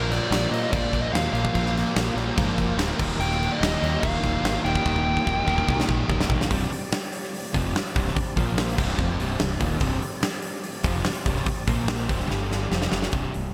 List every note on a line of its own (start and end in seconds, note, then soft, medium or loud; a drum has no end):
0.00 0.18 A#1 medium
0.00 0.31 A#2 loud
0.00 0.31 F3 loud
0.00 0.31 A#3 loud
0.00 2.96 A#3 medium
0.00 2.97 F4 medium
0.00 0.12 A#4 medium
0.00 2.96 C5 medium
0.12 0.52 D5 loud
0.12 snare soft
0.12 crash medium
0.31 0.45 A#1 loud
0.31 0.50 A#2 medium
0.31 0.51 F3 loud
0.31 0.51 A#3 medium
0.31 snare loud
0.31 crash medium
0.51 0.71 A#2 loud
0.51 0.65 A#2 medium
0.51 0.71 F3 loud
0.51 0.73 A#3 loud
0.51 0.72 D#5 loud
0.51 crash medium
0.72 0.86 A#1 loud
0.72 1.12 A#2 medium
0.72 1.12 F3 loud
0.72 1.14 A#3 loud
0.72 1.02 D5 loud
0.72 kick loud
0.72 crash medium
0.93 1.07 A#1 medium
0.93 kick medium
0.93 crash medium
1.02 1.13 D#5 medium
1.13 1.27 D#2 medium
1.13 1.31 A#2 medium
1.13 1.32 F3 medium
1.13 1.33 A#3 loud
1.13 1.32 F5 loud
1.13 snare loud
1.13 crash medium
1.32 1.47 A#1 medium
1.32 1.52 A#2 medium
1.32 1.53 F3 medium
1.32 1.54 A#3 medium
1.32 1.72 F5 loud
1.32 crash medium
1.45 kick medium
1.53 1.83 A#1 loud
1.53 1.94 A#2 loud
1.53 1.94 F3 loud
1.53 1.95 A#3 loud
1.53 kick loud
1.53 crash medium
1.66 snare soft
1.77 snare soft
1.77 crash medium
1.95 2.10 A#1 medium
1.95 2.14 A#2 medium
1.95 2.15 F3 medium
1.95 2.15 A#3 loud
1.95 snare loud
1.95 crash medium
2.15 2.29 A#1 medium
2.15 2.34 A#2 loud
2.15 2.35 F3 medium
2.15 2.37 A#3 loud
2.15 crash medium
2.36 2.51 G#2 medium
2.36 2.76 A#2 medium
2.36 2.77 F3 loud
2.36 2.78 A#3 loud
2.36 kick loud
2.36 crash medium
2.58 2.72 F1 medium
2.58 kick medium
2.58 crash medium
2.77 2.91 D1 loud
2.77 2.97 A#2 medium
2.77 2.98 F3 loud
2.77 2.99 A#3 loud
2.77 snare loud
2.77 crash medium
2.99 3.13 D#1 medium
2.99 3.19 D#2 loud
2.99 3.20 A#2 medium
2.99 3.20 D#3 loud
2.99 6.46 A#3 medium
2.99 6.47 D#4 medium
2.99 6.47 G4 medium
2.99 kick loud
2.99 crash loud
3.19 3.47 D#1 loud
3.19 3.60 D#2 medium
3.19 3.60 A#2 loud
3.19 3.61 D#3 loud
3.19 3.52 G5 loud
3.19 crash medium
3.31 snare soft
3.43 crash medium
3.52 4.00 D#5 loud
3.61 3.75 D#1 loud
3.61 3.81 D#2 medium
3.61 3.80 A#2 medium
3.61 3.81 D#3 medium
3.61 snare loud
3.61 crash medium
3.81 4.01 D#2 medium
3.81 3.96 D#2 medium
3.81 4.01 A#2 loud
3.81 4.01 D#3 loud
3.81 crash medium
4.00 4.17 D#1 medium
4.00 4.42 D#2 loud
4.00 4.42 A#2 loud
4.00 4.43 D#3 loud
4.00 4.59 F5 loud
4.00 kick loud
4.00 crash medium
4.23 4.37 D#1 medium
4.23 kick medium
4.23 crash medium
4.43 4.57 G#1 loud
4.43 4.63 D#2 medium
4.43 4.63 A#2 medium
4.43 4.64 D#3 medium
4.43 snare loud
4.43 crash medium
4.64 4.78 D#1 medium
4.64 4.83 D#2 medium
4.64 4.84 A#2 loud
4.64 4.84 D#3 medium
4.64 5.84 G5 medium
4.64 crash medium
4.75 kick medium
4.85 5.13 D#1 loud
4.85 5.24 D#2 loud
4.85 5.25 A#2 loud
4.85 5.25 D#3 loud
4.85 kick loud
4.96 kick medium
5.17 kick medium
5.25 5.40 D#1 medium
5.25 5.45 D#2 medium
5.25 5.45 A#2 medium
5.25 5.46 D#3 medium
5.25 kick medium
5.46 5.61 D#1 medium
5.46 5.66 D#2 loud
5.46 5.67 A#2 medium
5.46 5.67 D#3 medium
5.46 kick medium
5.58 kick medium
5.67 5.82 C2 medium
5.67 6.07 D#2 loud
5.67 6.07 A#2 medium
5.67 6.08 D#3 loud
5.67 kick loud
5.80 snare medium
5.89 6.02 A#1 medium
5.89 kick medium
6.08 6.23 C1 medium
6.08 6.27 D#2 medium
6.08 6.28 A#2 loud
6.08 6.28 D#3 medium
6.08 kick loud
6.21 snare medium
6.28 6.44 B1 medium
6.28 6.48 D#2 medium
6.28 6.49 A#2 medium
6.28 6.49 D#3 loud
6.28 kick loud
6.41 snare medium
6.50 6.70 C1 loud
6.50 6.69 C2 medium
6.50 6.70 G2 loud
6.50 6.70 C3 loud
6.50 8.36 C4 medium
6.50 8.36 G4 medium
6.50 8.36 D5 medium
6.50 kick loud
6.50 open hi-hat medium
6.70 muted fingered electric bass stroke soft
6.70 muted distorted electric guitar stroke medium
6.70 muted overdriven electric guitar stroke medium
6.70 open hi-hat medium
6.91 muted fingered electric bass stroke soft
6.91 muted overdriven electric guitar stroke medium
6.91 muted distorted electric guitar stroke medium
6.91 snare loud
6.91 open hi-hat medium
7.13 open hi-hat medium
7.24 snare soft
7.34 open hi-hat medium
7.54 7.73 F1 loud
7.54 7.74 F2 medium
7.54 7.74 C3 loud
7.54 7.74 F3 loud
7.54 kick loud
7.54 open hi-hat medium
7.76 snare loud
7.76 open hi-hat medium
7.95 8.15 C1 medium
7.95 8.14 C2 medium
7.95 8.15 G2 loud
7.95 8.15 C3 loud
7.95 kick loud
7.95 open hi-hat medium
8.08 snare soft
8.15 muted overdriven electric guitar stroke medium
8.15 muted distorted electric guitar stroke medium
8.15 muted fingered electric bass stroke soft
8.15 kick loud
8.15 open hi-hat medium
8.36 8.75 A#1 medium
8.36 8.76 A#2 medium
8.36 8.77 F3 loud
8.36 8.77 A#3 loud
8.36 8.77 A#3 medium
8.36 8.77 F4 medium
8.36 8.78 C5 medium
8.36 kick loud
8.36 open hi-hat medium
8.58 snare loud
8.58 open hi-hat medium
8.77 8.97 C1 loud
8.77 8.97 C2 loud
8.77 8.97 G2 loud
8.77 8.97 C3 loud
8.77 11.66 C4 medium
8.77 11.65 G4 medium
8.77 11.65 D5 medium
8.77 kick loud
8.77 crash loud
8.98 9.18 F1 loud
8.98 9.18 F2 loud
8.98 9.18 C3 loud
8.98 9.18 F3 loud
8.98 kick loud
9.19 9.39 C1 loud
9.19 9.38 C2 loud
9.19 9.38 G2 medium
9.19 9.39 C3 loud
9.19 open hi-hat medium
9.39 9.59 C1 medium
9.39 9.56 C2 medium
9.39 9.56 G2 medium
9.39 snare loud
9.39 open hi-hat medium
9.59 9.80 D#1 medium
9.59 9.79 D#2 loud
9.59 9.79 A#2 loud
9.59 9.80 D#3 loud
9.59 kick loud
9.59 open hi-hat medium
9.80 10.00 C1 loud
9.80 9.99 C2 loud
9.80 10.01 G2 loud
9.80 10.01 C3 loud
9.80 kick loud
9.80 open hi-hat medium
10.01 muted overdriven electric guitar stroke medium
10.01 muted distorted electric guitar stroke medium
10.01 muted fingered electric bass stroke soft
10.01 open hi-hat medium
10.21 muted distorted electric guitar stroke medium
10.21 muted fingered electric bass stroke soft
10.21 muted overdriven electric guitar stroke medium
10.21 snare loud
10.21 open hi-hat medium
10.42 open hi-hat medium
10.64 open hi-hat medium
10.84 11.04 F1 medium
10.84 11.04 F2 loud
10.84 11.05 C3 loud
10.84 11.05 F3 loud
10.84 kick loud
10.84 open hi-hat medium
11.04 snare loud
11.04 open hi-hat medium
11.25 11.45 C1 medium
11.25 11.44 C2 loud
11.25 11.46 G2 loud
11.25 11.46 C3 loud
11.25 kick loud
11.25 open hi-hat medium
11.36 snare soft
11.46 muted overdriven electric guitar stroke medium
11.46 muted fingered electric bass stroke soft
11.46 muted distorted electric guitar stroke medium
11.46 kick loud
11.46 open hi-hat medium
11.66 12.06 A#1 medium
11.66 12.08 A#2 medium
11.66 12.08 F3 loud
11.66 12.09 A#3 loud
11.66 12.09 A#3 medium
11.66 12.09 F4 medium
11.66 12.10 C5 medium
11.66 kick loud
11.66 open hi-hat medium
11.88 snare loud
11.88 open hi-hat medium
12.09 12.29 C1 medium
12.09 12.29 C2 medium
12.09 12.29 G2 medium
12.09 12.29 C3 loud
12.09 12.30 C4 medium
12.09 12.29 G4 medium
12.09 12.30 D5 medium
12.09 kick loud
12.09 open hi-hat medium
12.20 snare soft
12.30 12.69 G1 medium
12.30 12.71 G2 medium
12.30 12.71 D3 loud
12.30 12.71 G3 medium
12.30 12.71 G3 loud
12.30 12.71 D4 medium
12.30 13.13 G4 medium
12.30 snare medium
12.52 snare medium
12.71 12.91 F1 medium
12.71 12.91 F2 medium
12.71 12.91 C3 loud
12.71 12.92 F3 loud
12.71 13.13 C4 medium
12.71 13.13 D5 medium
12.71 snare medium
12.82 snare medium
12.91 13.12 F#1 medium
12.91 13.12 F#2 medium
12.91 13.12 C#3 medium
12.91 13.12 F#3 loud
12.91 snare loud
13.02 snare medium
13.12 13.26 C1 medium
13.12 13.32 C2 medium
13.12 13.33 G2 medium
13.12 13.33 C3 medium
13.12 kick loud
13.12 open hi-hat medium
13.34 13.47 C1 medium
13.34 13.53 C2 medium
13.34 13.53 G2 medium
13.34 open hi-hat medium